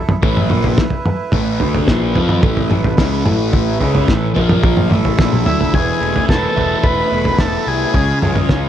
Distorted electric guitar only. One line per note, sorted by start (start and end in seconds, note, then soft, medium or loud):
0.22 0.49 A2 loud
0.22 0.50 E3 medium
0.22 0.50 A3 medium
0.51 0.78 A#2 medium
0.51 0.78 F3 medium
0.51 0.78 A#3 loud
1.33 1.60 A2 medium
1.33 1.60 E3 medium
1.33 1.60 A3 loud
1.60 1.87 D3 medium
1.60 1.88 A3 medium
1.60 1.88 D4 medium
1.87 2.14 A#2 medium
1.87 2.13 F3 medium
1.87 2.15 A#3 loud
2.14 2.42 F3 medium
2.14 2.42 C4 medium
2.14 2.43 F4 medium
2.42 2.70 A2 medium
2.42 2.70 E3 medium
2.42 2.70 A3 loud
2.71 2.93 A2 medium
2.71 2.93 E3 medium
2.98 3.24 C#3 medium
2.98 3.25 G#3 medium
2.98 3.25 C#4 loud
3.25 3.79 A2 medium
3.25 3.80 E3 medium
3.25 3.80 A3 loud
3.80 4.07 C#3 medium
3.80 4.07 G#3 medium
3.80 4.08 C#4 medium
4.08 4.30 A2 medium
4.08 4.30 E3 medium
4.34 4.89 A#2 medium
4.34 4.90 F3 medium
4.34 4.90 A#3 medium
4.90 5.17 A2 medium
4.90 5.18 E3 medium
4.90 5.18 A3 medium
5.18 5.45 A#2 medium
5.18 5.45 F3 loud
5.18 5.45 A#3 medium
5.46 5.73 D3 medium
5.46 5.73 A3 medium
5.46 5.74 D4 medium
5.73 7.11 E2 medium
6.01 6.83 A3 medium
6.28 7.11 B3 medium
6.55 7.65 E4 medium
6.84 7.38 A3 medium
7.12 7.95 B3 medium
7.39 7.94 A3 medium
7.66 7.94 E4 medium
7.94 8.69 C#3 medium
8.22 8.69 G#3 medium
8.50 8.69 C#4 medium